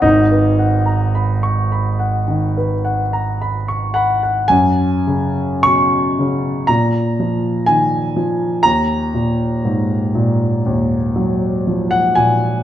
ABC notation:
X:1
M:4/4
L:1/16
Q:1/4=59
K:F#
V:1 name="Grand piano"
D12- D2 f2 | g4 c'4 a4 g4 | a12- a f g2 |]
V:2 name="Grand piano" clef=bass
[G,,,G,,] B f a b c' b f D, B f a b c' b f | F,,2 C,2 B,,2 C,2 A,,2 E,2 D,2 E,2 | D,,2 A,,2 G,,2 A,,2 D,,2 F,2 E,2 A,,2 |]